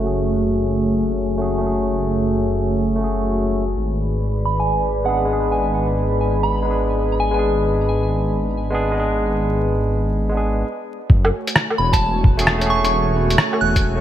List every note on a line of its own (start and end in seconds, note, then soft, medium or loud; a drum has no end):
0.00 3.75 F#1 medium
0.00 1.34 A3 medium
0.00 3.72 A3 medium
0.00 1.36 C#4 medium
0.00 3.73 F#4 medium
0.00 3.73 C#5 medium
0.00 3.73 G#5 medium
0.04 1.37 F#4 medium
0.04 1.38 G#4 medium
1.38 1.57 A3 medium
1.38 1.59 C#4 medium
1.38 1.59 F#4 medium
1.38 1.60 G#4 medium
1.58 2.94 A3 medium
1.58 2.96 C#4 medium
1.64 2.97 F#4 medium
1.64 2.98 G#4 medium
2.96 3.63 A3 medium
2.96 3.64 C#4 medium
3.01 3.66 F#4 medium
3.01 3.67 G#4 medium
3.76 10.64 G#1 medium
3.76 10.60 G#4 medium
3.76 10.60 B4 medium
3.76 10.60 D5 medium
3.76 10.60 B5 medium
4.45 4.57 B5 medium
4.60 4.84 G#5 medium
5.04 5.24 G#3 medium
5.04 5.25 B3 medium
5.04 5.26 D4 medium
5.04 5.11 F#5 medium
5.08 5.27 G#4 medium
5.14 5.24 F#5 medium
5.25 6.61 G#3 medium
5.25 6.62 B3 medium
5.30 6.64 D4 medium
5.30 6.65 G#4 medium
5.52 5.76 G#5 medium
6.43 6.67 B5 medium
6.62 7.30 G#3 medium
6.62 7.31 B3 medium
6.68 7.32 D4 medium
6.68 7.34 G#4 medium
7.20 7.30 G#5 medium
7.31 8.67 G#3 medium
7.31 8.68 B3 medium
7.31 7.40 G#5 medium
7.36 8.70 D4 medium
7.36 8.71 G#4 medium
8.70 8.90 G#3 medium
8.70 8.92 B3 medium
8.70 8.92 D4 medium
8.74 8.93 G#4 medium
8.91 10.27 G#3 medium
8.91 10.29 B3 medium
8.97 10.30 D4 medium
8.97 10.31 G#4 medium
10.29 10.62 G#3 medium
10.29 10.63 B3 medium
10.35 10.65 D4 medium
10.35 10.66 G#4 medium
11.10 11.31 F#1 loud
11.10 14.01 A3 medium
11.10 14.01 F#4 medium
11.10 14.01 C#5 medium
11.10 14.01 G#5 medium
11.10 kick loud
11.25 low woodblock medium
11.47 closed hi-hat medium
11.56 cross-stick loud
11.70 low woodblock medium
11.78 13.38 E1 loud
11.78 11.90 B5 medium
11.93 12.17 A5 medium
11.93 kick medium
11.93 closed hi-hat medium
12.24 kick loud
12.37 12.57 A3 medium
12.37 12.58 C#4 medium
12.37 12.59 F#4 medium
12.37 12.59 G#4 loud
12.37 closed hi-hat medium
12.47 cross-stick loud
12.58 13.94 A3 medium
12.58 13.95 C#4 medium
12.58 closed hi-hat soft
12.63 13.97 F#4 medium
12.63 13.98 G#4 medium
12.70 12.79 C#6 medium
12.85 12.90 C#6 medium
12.85 closed hi-hat medium
13.30 closed hi-hat medium
13.38 cross-stick loud
13.53 low woodblock medium
13.61 14.01 E1 loud
13.61 13.99 F#6 medium
13.76 kick medium
13.76 closed hi-hat medium
13.95 14.01 A3 medium
13.95 14.01 C#4 medium